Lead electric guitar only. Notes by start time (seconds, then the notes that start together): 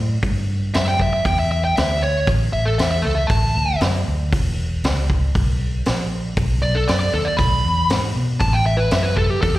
0.74 E5
0.88 G5
1.02 E5
1.13 E5
1.26 G5
1.39 E5
1.52 E5
1.65 G5
1.76 E5
2.02 C#5
2.53 E5
2.65 A4
2.78 E5
2.91 E5
3.02 A4
3.15 E5
3.27 A5
6.62 D5
6.75 A4
6.88 D5
7.00 D5
7.14 A4
7.25 D5
7.37 B5
8.40 A5
8.53 G5
8.66 E5
8.77 B4
8.92 E5
9.03 B4
9.16 A4
9.30 G4
9.42 A4
9.56 G4